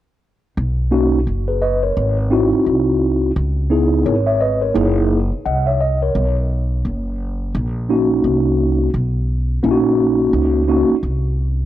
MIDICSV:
0, 0, Header, 1, 4, 480
1, 0, Start_track
1, 0, Key_signature, 5, "major"
1, 0, Tempo, 697674
1, 392, Time_signature, 4, 2, 24, 8
1, 8019, End_track
2, 0, Start_track
2, 0, Title_t, "Tine electric piano"
2, 0, Program_c, 0, 4
2, 626, Note_on_c, 0, 58, 67
2, 630, Note_on_c, 0, 61, 64
2, 632, Note_on_c, 0, 63, 63
2, 634, Note_on_c, 0, 66, 76
2, 812, Note_off_c, 0, 58, 0
2, 814, Note_off_c, 0, 61, 0
2, 815, Note_off_c, 0, 63, 0
2, 816, Note_off_c, 0, 66, 0
2, 1018, Note_on_c, 0, 71, 52
2, 1023, Note_on_c, 0, 68, 44
2, 1107, Note_off_c, 0, 71, 0
2, 1111, Note_off_c, 0, 68, 0
2, 1113, Note_on_c, 0, 75, 61
2, 1115, Note_on_c, 0, 71, 52
2, 1250, Note_off_c, 0, 75, 0
2, 1251, Note_off_c, 0, 71, 0
2, 1259, Note_on_c, 0, 73, 52
2, 1262, Note_on_c, 0, 70, 47
2, 1486, Note_off_c, 0, 73, 0
2, 1488, Note_off_c, 0, 70, 0
2, 1587, Note_on_c, 0, 60, 69
2, 1590, Note_on_c, 0, 63, 62
2, 1591, Note_on_c, 0, 64, 61
2, 1595, Note_on_c, 0, 66, 74
2, 2271, Note_off_c, 0, 60, 0
2, 2273, Note_off_c, 0, 63, 0
2, 2273, Note_off_c, 0, 64, 0
2, 2276, Note_off_c, 0, 66, 0
2, 2546, Note_on_c, 0, 59, 64
2, 2547, Note_on_c, 0, 63, 62
2, 2552, Note_on_c, 0, 64, 59
2, 2555, Note_on_c, 0, 68, 69
2, 2791, Note_on_c, 0, 73, 56
2, 2796, Note_on_c, 0, 70, 44
2, 2847, Note_off_c, 0, 59, 0
2, 2848, Note_off_c, 0, 63, 0
2, 2850, Note_off_c, 0, 64, 0
2, 2851, Note_off_c, 0, 68, 0
2, 2929, Note_off_c, 0, 73, 0
2, 2931, Note_off_c, 0, 70, 0
2, 2935, Note_on_c, 0, 76, 59
2, 2939, Note_on_c, 0, 73, 50
2, 3027, Note_off_c, 0, 76, 0
2, 3029, Note_off_c, 0, 73, 0
2, 3032, Note_on_c, 0, 75, 65
2, 3037, Note_on_c, 0, 71, 54
2, 3169, Note_off_c, 0, 75, 0
2, 3172, Note_off_c, 0, 71, 0
2, 3174, Note_on_c, 0, 73, 56
2, 3178, Note_on_c, 0, 70, 48
2, 3262, Note_on_c, 0, 58, 63
2, 3266, Note_on_c, 0, 63, 60
2, 3267, Note_on_c, 0, 64, 59
2, 3270, Note_on_c, 0, 68, 71
2, 3403, Note_off_c, 0, 73, 0
2, 3406, Note_off_c, 0, 70, 0
2, 3565, Note_off_c, 0, 58, 0
2, 3567, Note_off_c, 0, 63, 0
2, 3567, Note_off_c, 0, 64, 0
2, 3569, Note_off_c, 0, 68, 0
2, 3753, Note_on_c, 0, 78, 59
2, 3758, Note_on_c, 0, 75, 46
2, 3890, Note_off_c, 0, 78, 0
2, 3892, Note_off_c, 0, 75, 0
2, 3896, Note_on_c, 0, 76, 59
2, 3901, Note_on_c, 0, 73, 49
2, 3987, Note_off_c, 0, 76, 0
2, 3990, Note_off_c, 0, 73, 0
2, 3995, Note_on_c, 0, 75, 63
2, 4131, Note_off_c, 0, 75, 0
2, 4144, Note_on_c, 0, 73, 54
2, 4147, Note_on_c, 0, 70, 49
2, 4369, Note_off_c, 0, 73, 0
2, 4370, Note_off_c, 0, 70, 0
2, 5430, Note_on_c, 0, 58, 65
2, 5433, Note_on_c, 0, 61, 60
2, 5435, Note_on_c, 0, 63, 58
2, 5438, Note_on_c, 0, 66, 73
2, 6113, Note_off_c, 0, 58, 0
2, 6114, Note_off_c, 0, 61, 0
2, 6115, Note_off_c, 0, 63, 0
2, 6117, Note_off_c, 0, 66, 0
2, 6626, Note_on_c, 0, 58, 78
2, 6628, Note_on_c, 0, 61, 72
2, 6631, Note_on_c, 0, 63, 71
2, 6636, Note_on_c, 0, 64, 65
2, 6681, Note_on_c, 0, 66, 84
2, 6688, Note_off_c, 0, 64, 0
2, 7311, Note_off_c, 0, 58, 0
2, 7312, Note_off_c, 0, 61, 0
2, 7313, Note_off_c, 0, 63, 0
2, 7338, Note_off_c, 0, 66, 0
2, 7347, Note_on_c, 0, 58, 65
2, 7349, Note_on_c, 0, 61, 59
2, 7352, Note_on_c, 0, 63, 61
2, 7355, Note_on_c, 0, 66, 75
2, 7532, Note_off_c, 0, 58, 0
2, 7533, Note_off_c, 0, 61, 0
2, 7535, Note_off_c, 0, 63, 0
2, 7536, Note_off_c, 0, 66, 0
2, 8019, End_track
3, 0, Start_track
3, 0, Title_t, "Upright bass"
3, 0, Program_c, 1, 32
3, 393, Note_on_c, 1, 35, 89
3, 849, Note_off_c, 1, 35, 0
3, 873, Note_on_c, 1, 30, 72
3, 1329, Note_off_c, 1, 30, 0
3, 1354, Note_on_c, 1, 32, 88
3, 1719, Note_off_c, 1, 32, 0
3, 1832, Note_on_c, 1, 36, 64
3, 2288, Note_off_c, 1, 36, 0
3, 2313, Note_on_c, 1, 37, 93
3, 2769, Note_off_c, 1, 37, 0
3, 2792, Note_on_c, 1, 32, 78
3, 3248, Note_off_c, 1, 32, 0
3, 3271, Note_on_c, 1, 30, 90
3, 3637, Note_off_c, 1, 30, 0
3, 3754, Note_on_c, 1, 36, 75
3, 4209, Note_off_c, 1, 36, 0
3, 4231, Note_on_c, 1, 35, 90
3, 4687, Note_off_c, 1, 35, 0
3, 4711, Note_on_c, 1, 30, 75
3, 5167, Note_off_c, 1, 30, 0
3, 5191, Note_on_c, 1, 34, 88
3, 5648, Note_off_c, 1, 34, 0
3, 5669, Note_on_c, 1, 36, 72
3, 6127, Note_off_c, 1, 36, 0
3, 6150, Note_on_c, 1, 35, 85
3, 6607, Note_off_c, 1, 35, 0
3, 6631, Note_on_c, 1, 34, 79
3, 7087, Note_off_c, 1, 34, 0
3, 7109, Note_on_c, 1, 37, 81
3, 7476, Note_off_c, 1, 37, 0
3, 7588, Note_on_c, 1, 36, 77
3, 8019, Note_off_c, 1, 36, 0
3, 8019, End_track
4, 0, Start_track
4, 0, Title_t, "Muted upright bass strokes"
4, 1737, Note_on_c, 9, 29, 43
4, 1806, Note_off_c, 9, 29, 0
4, 3656, Note_on_c, 9, 29, 40
4, 3725, Note_off_c, 9, 29, 0
4, 7494, Note_on_c, 9, 29, 44
4, 7563, Note_off_c, 9, 29, 0
4, 8019, End_track
0, 0, End_of_file